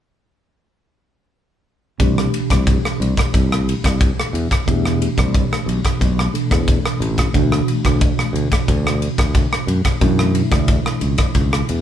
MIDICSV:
0, 0, Header, 1, 5, 480
1, 0, Start_track
1, 0, Key_signature, 0, "major"
1, 0, Tempo, 668896
1, 1432, Time_signature, 4, 2, 24, 8
1, 8477, End_track
2, 0, Start_track
2, 0, Title_t, "Tine electric piano"
2, 0, Program_c, 0, 4
2, 1424, Note_on_c, 0, 47, 56
2, 1427, Note_on_c, 0, 52, 52
2, 1436, Note_on_c, 0, 57, 55
2, 1438, Note_on_c, 0, 62, 50
2, 1443, Note_on_c, 0, 67, 64
2, 3319, Note_off_c, 0, 47, 0
2, 3321, Note_off_c, 0, 52, 0
2, 3325, Note_off_c, 0, 57, 0
2, 3327, Note_off_c, 0, 62, 0
2, 3329, Note_off_c, 0, 67, 0
2, 3342, Note_on_c, 0, 47, 61
2, 3353, Note_on_c, 0, 52, 54
2, 3353, Note_on_c, 0, 57, 55
2, 3361, Note_on_c, 0, 62, 53
2, 3366, Note_on_c, 0, 67, 63
2, 4522, Note_off_c, 0, 47, 0
2, 4528, Note_off_c, 0, 52, 0
2, 4528, Note_off_c, 0, 57, 0
2, 4532, Note_off_c, 0, 62, 0
2, 4535, Note_off_c, 0, 67, 0
2, 4540, Note_on_c, 0, 47, 42
2, 4542, Note_on_c, 0, 52, 39
2, 4542, Note_on_c, 0, 62, 38
2, 4544, Note_on_c, 0, 57, 39
2, 4549, Note_on_c, 0, 69, 48
2, 5247, Note_off_c, 0, 47, 0
2, 5256, Note_on_c, 0, 47, 63
2, 5257, Note_off_c, 0, 52, 0
2, 5259, Note_off_c, 0, 57, 0
2, 5265, Note_off_c, 0, 62, 0
2, 5265, Note_on_c, 0, 52, 55
2, 5268, Note_on_c, 0, 57, 53
2, 5270, Note_off_c, 0, 69, 0
2, 5273, Note_on_c, 0, 62, 57
2, 5276, Note_on_c, 0, 66, 67
2, 7154, Note_off_c, 0, 47, 0
2, 7159, Note_off_c, 0, 52, 0
2, 7160, Note_off_c, 0, 57, 0
2, 7163, Note_off_c, 0, 62, 0
2, 7164, Note_off_c, 0, 66, 0
2, 7179, Note_on_c, 0, 47, 63
2, 7183, Note_on_c, 0, 52, 56
2, 7186, Note_on_c, 0, 57, 56
2, 7196, Note_on_c, 0, 62, 56
2, 7203, Note_on_c, 0, 64, 68
2, 8477, Note_off_c, 0, 47, 0
2, 8477, Note_off_c, 0, 52, 0
2, 8477, Note_off_c, 0, 57, 0
2, 8477, Note_off_c, 0, 62, 0
2, 8477, Note_off_c, 0, 64, 0
2, 8477, End_track
3, 0, Start_track
3, 0, Title_t, "Fingered electric bass"
3, 0, Program_c, 1, 33
3, 1435, Note_on_c, 1, 36, 70
3, 1621, Note_off_c, 1, 36, 0
3, 1798, Note_on_c, 1, 36, 67
3, 1983, Note_off_c, 1, 36, 0
3, 2153, Note_on_c, 1, 36, 68
3, 2247, Note_off_c, 1, 36, 0
3, 2398, Note_on_c, 1, 36, 73
3, 2677, Note_off_c, 1, 36, 0
3, 2755, Note_on_c, 1, 36, 63
3, 2941, Note_off_c, 1, 36, 0
3, 3108, Note_on_c, 1, 40, 68
3, 3204, Note_off_c, 1, 40, 0
3, 3356, Note_on_c, 1, 40, 75
3, 3636, Note_off_c, 1, 40, 0
3, 3714, Note_on_c, 1, 36, 64
3, 3901, Note_off_c, 1, 36, 0
3, 4064, Note_on_c, 1, 35, 72
3, 4161, Note_off_c, 1, 35, 0
3, 4311, Note_on_c, 1, 35, 69
3, 4498, Note_off_c, 1, 35, 0
3, 4672, Note_on_c, 1, 40, 64
3, 4859, Note_off_c, 1, 40, 0
3, 5026, Note_on_c, 1, 33, 74
3, 5215, Note_off_c, 1, 33, 0
3, 5268, Note_on_c, 1, 38, 78
3, 5456, Note_off_c, 1, 38, 0
3, 5635, Note_on_c, 1, 38, 70
3, 5821, Note_off_c, 1, 38, 0
3, 5978, Note_on_c, 1, 38, 74
3, 6077, Note_off_c, 1, 38, 0
3, 6231, Note_on_c, 1, 38, 78
3, 6512, Note_off_c, 1, 38, 0
3, 6592, Note_on_c, 1, 38, 66
3, 6779, Note_off_c, 1, 38, 0
3, 6941, Note_on_c, 1, 42, 72
3, 7039, Note_off_c, 1, 42, 0
3, 7186, Note_on_c, 1, 42, 81
3, 7469, Note_off_c, 1, 42, 0
3, 7546, Note_on_c, 1, 38, 69
3, 7735, Note_off_c, 1, 38, 0
3, 7903, Note_on_c, 1, 37, 69
3, 8000, Note_off_c, 1, 37, 0
3, 8144, Note_on_c, 1, 37, 70
3, 8333, Note_off_c, 1, 37, 0
3, 8392, Note_on_c, 1, 40, 66
3, 8477, Note_off_c, 1, 40, 0
3, 8477, End_track
4, 0, Start_track
4, 0, Title_t, "Muted fingered electric bass strokes"
4, 3238, Note_on_c, 9, 29, 27
4, 3310, Note_off_c, 9, 29, 0
4, 8477, End_track
5, 0, Start_track
5, 0, Title_t, "Drums"
5, 1434, Note_on_c, 9, 36, 65
5, 1435, Note_on_c, 9, 51, 48
5, 1505, Note_off_c, 9, 36, 0
5, 1507, Note_off_c, 9, 51, 0
5, 1565, Note_on_c, 9, 37, 59
5, 1637, Note_off_c, 9, 37, 0
5, 1677, Note_on_c, 9, 51, 49
5, 1749, Note_off_c, 9, 51, 0
5, 1796, Note_on_c, 9, 36, 63
5, 1798, Note_on_c, 9, 51, 49
5, 1805, Note_on_c, 9, 37, 59
5, 1868, Note_off_c, 9, 36, 0
5, 1870, Note_off_c, 9, 51, 0
5, 1877, Note_off_c, 9, 37, 0
5, 1915, Note_on_c, 9, 36, 80
5, 1919, Note_on_c, 9, 51, 49
5, 1987, Note_off_c, 9, 36, 0
5, 1990, Note_off_c, 9, 51, 0
5, 2048, Note_on_c, 9, 37, 63
5, 2119, Note_off_c, 9, 37, 0
5, 2166, Note_on_c, 9, 51, 48
5, 2238, Note_off_c, 9, 51, 0
5, 2278, Note_on_c, 9, 36, 67
5, 2284, Note_on_c, 9, 51, 49
5, 2291, Note_on_c, 9, 37, 63
5, 2349, Note_off_c, 9, 36, 0
5, 2356, Note_off_c, 9, 51, 0
5, 2362, Note_off_c, 9, 37, 0
5, 2397, Note_on_c, 9, 36, 69
5, 2402, Note_on_c, 9, 51, 50
5, 2468, Note_off_c, 9, 36, 0
5, 2474, Note_off_c, 9, 51, 0
5, 2529, Note_on_c, 9, 37, 66
5, 2600, Note_off_c, 9, 37, 0
5, 2646, Note_on_c, 9, 51, 50
5, 2718, Note_off_c, 9, 51, 0
5, 2758, Note_on_c, 9, 36, 64
5, 2762, Note_on_c, 9, 51, 50
5, 2769, Note_on_c, 9, 37, 70
5, 2829, Note_off_c, 9, 36, 0
5, 2834, Note_off_c, 9, 51, 0
5, 2841, Note_off_c, 9, 37, 0
5, 2876, Note_on_c, 9, 36, 85
5, 2878, Note_on_c, 9, 51, 48
5, 2948, Note_off_c, 9, 36, 0
5, 2950, Note_off_c, 9, 51, 0
5, 3011, Note_on_c, 9, 37, 63
5, 3082, Note_off_c, 9, 37, 0
5, 3121, Note_on_c, 9, 51, 49
5, 3193, Note_off_c, 9, 51, 0
5, 3237, Note_on_c, 9, 36, 64
5, 3241, Note_on_c, 9, 51, 49
5, 3248, Note_on_c, 9, 37, 63
5, 3309, Note_off_c, 9, 36, 0
5, 3313, Note_off_c, 9, 51, 0
5, 3319, Note_off_c, 9, 37, 0
5, 3356, Note_on_c, 9, 36, 61
5, 3361, Note_on_c, 9, 51, 47
5, 3428, Note_off_c, 9, 36, 0
5, 3433, Note_off_c, 9, 51, 0
5, 3484, Note_on_c, 9, 37, 60
5, 3555, Note_off_c, 9, 37, 0
5, 3601, Note_on_c, 9, 51, 49
5, 3672, Note_off_c, 9, 51, 0
5, 3715, Note_on_c, 9, 36, 64
5, 3718, Note_on_c, 9, 51, 44
5, 3725, Note_on_c, 9, 37, 62
5, 3787, Note_off_c, 9, 36, 0
5, 3790, Note_off_c, 9, 51, 0
5, 3797, Note_off_c, 9, 37, 0
5, 3836, Note_on_c, 9, 36, 80
5, 3840, Note_on_c, 9, 51, 47
5, 3907, Note_off_c, 9, 36, 0
5, 3911, Note_off_c, 9, 51, 0
5, 3967, Note_on_c, 9, 37, 65
5, 4038, Note_off_c, 9, 37, 0
5, 4081, Note_on_c, 9, 51, 45
5, 4153, Note_off_c, 9, 51, 0
5, 4195, Note_on_c, 9, 36, 61
5, 4196, Note_on_c, 9, 51, 46
5, 4202, Note_on_c, 9, 37, 66
5, 4267, Note_off_c, 9, 36, 0
5, 4268, Note_off_c, 9, 51, 0
5, 4274, Note_off_c, 9, 37, 0
5, 4314, Note_on_c, 9, 36, 66
5, 4318, Note_on_c, 9, 51, 46
5, 4386, Note_off_c, 9, 36, 0
5, 4389, Note_off_c, 9, 51, 0
5, 4444, Note_on_c, 9, 37, 64
5, 4515, Note_off_c, 9, 37, 0
5, 4556, Note_on_c, 9, 51, 45
5, 4628, Note_off_c, 9, 51, 0
5, 4673, Note_on_c, 9, 36, 65
5, 4676, Note_on_c, 9, 51, 46
5, 4682, Note_on_c, 9, 37, 63
5, 4744, Note_off_c, 9, 36, 0
5, 4747, Note_off_c, 9, 51, 0
5, 4754, Note_off_c, 9, 37, 0
5, 4792, Note_on_c, 9, 36, 84
5, 4795, Note_on_c, 9, 51, 48
5, 4864, Note_off_c, 9, 36, 0
5, 4867, Note_off_c, 9, 51, 0
5, 4919, Note_on_c, 9, 37, 64
5, 4991, Note_off_c, 9, 37, 0
5, 5036, Note_on_c, 9, 51, 48
5, 5108, Note_off_c, 9, 51, 0
5, 5152, Note_on_c, 9, 36, 65
5, 5154, Note_on_c, 9, 51, 45
5, 5160, Note_on_c, 9, 37, 67
5, 5223, Note_off_c, 9, 36, 0
5, 5225, Note_off_c, 9, 51, 0
5, 5232, Note_off_c, 9, 37, 0
5, 5270, Note_on_c, 9, 36, 65
5, 5272, Note_on_c, 9, 51, 46
5, 5341, Note_off_c, 9, 36, 0
5, 5344, Note_off_c, 9, 51, 0
5, 5398, Note_on_c, 9, 37, 66
5, 5470, Note_off_c, 9, 37, 0
5, 5512, Note_on_c, 9, 51, 48
5, 5583, Note_off_c, 9, 51, 0
5, 5631, Note_on_c, 9, 36, 67
5, 5634, Note_on_c, 9, 51, 47
5, 5641, Note_on_c, 9, 37, 63
5, 5703, Note_off_c, 9, 36, 0
5, 5706, Note_off_c, 9, 51, 0
5, 5713, Note_off_c, 9, 37, 0
5, 5749, Note_on_c, 9, 36, 90
5, 5752, Note_on_c, 9, 51, 51
5, 5821, Note_off_c, 9, 36, 0
5, 5823, Note_off_c, 9, 51, 0
5, 5877, Note_on_c, 9, 37, 62
5, 5949, Note_off_c, 9, 37, 0
5, 5996, Note_on_c, 9, 51, 48
5, 6068, Note_off_c, 9, 51, 0
5, 6111, Note_on_c, 9, 36, 67
5, 6114, Note_on_c, 9, 51, 51
5, 6121, Note_on_c, 9, 37, 70
5, 6183, Note_off_c, 9, 36, 0
5, 6186, Note_off_c, 9, 51, 0
5, 6192, Note_off_c, 9, 37, 0
5, 6231, Note_on_c, 9, 36, 65
5, 6233, Note_on_c, 9, 51, 49
5, 6302, Note_off_c, 9, 36, 0
5, 6305, Note_off_c, 9, 51, 0
5, 6363, Note_on_c, 9, 37, 69
5, 6435, Note_off_c, 9, 37, 0
5, 6473, Note_on_c, 9, 51, 51
5, 6544, Note_off_c, 9, 51, 0
5, 6589, Note_on_c, 9, 36, 70
5, 6591, Note_on_c, 9, 51, 54
5, 6597, Note_on_c, 9, 37, 69
5, 6661, Note_off_c, 9, 36, 0
5, 6662, Note_off_c, 9, 51, 0
5, 6669, Note_off_c, 9, 37, 0
5, 6708, Note_on_c, 9, 36, 88
5, 6709, Note_on_c, 9, 51, 52
5, 6780, Note_off_c, 9, 36, 0
5, 6780, Note_off_c, 9, 51, 0
5, 6836, Note_on_c, 9, 37, 68
5, 6908, Note_off_c, 9, 37, 0
5, 6948, Note_on_c, 9, 51, 55
5, 7020, Note_off_c, 9, 51, 0
5, 7066, Note_on_c, 9, 51, 54
5, 7067, Note_on_c, 9, 36, 67
5, 7073, Note_on_c, 9, 37, 64
5, 7138, Note_off_c, 9, 51, 0
5, 7139, Note_off_c, 9, 36, 0
5, 7145, Note_off_c, 9, 37, 0
5, 7185, Note_on_c, 9, 51, 50
5, 7186, Note_on_c, 9, 36, 68
5, 7257, Note_off_c, 9, 51, 0
5, 7258, Note_off_c, 9, 36, 0
5, 7313, Note_on_c, 9, 37, 68
5, 7385, Note_off_c, 9, 37, 0
5, 7426, Note_on_c, 9, 51, 54
5, 7497, Note_off_c, 9, 51, 0
5, 7545, Note_on_c, 9, 51, 47
5, 7546, Note_on_c, 9, 36, 65
5, 7552, Note_on_c, 9, 37, 64
5, 7617, Note_off_c, 9, 51, 0
5, 7618, Note_off_c, 9, 36, 0
5, 7624, Note_off_c, 9, 37, 0
5, 7663, Note_on_c, 9, 51, 51
5, 7666, Note_on_c, 9, 36, 85
5, 7735, Note_off_c, 9, 51, 0
5, 7738, Note_off_c, 9, 36, 0
5, 7793, Note_on_c, 9, 37, 66
5, 7865, Note_off_c, 9, 37, 0
5, 7902, Note_on_c, 9, 51, 47
5, 7974, Note_off_c, 9, 51, 0
5, 8021, Note_on_c, 9, 51, 48
5, 8026, Note_on_c, 9, 36, 69
5, 8027, Note_on_c, 9, 37, 69
5, 8092, Note_off_c, 9, 51, 0
5, 8097, Note_off_c, 9, 36, 0
5, 8099, Note_off_c, 9, 37, 0
5, 8142, Note_on_c, 9, 51, 49
5, 8145, Note_on_c, 9, 36, 67
5, 8214, Note_off_c, 9, 51, 0
5, 8217, Note_off_c, 9, 36, 0
5, 8274, Note_on_c, 9, 37, 68
5, 8345, Note_off_c, 9, 37, 0
5, 8387, Note_on_c, 9, 51, 49
5, 8458, Note_off_c, 9, 51, 0
5, 8477, End_track
0, 0, End_of_file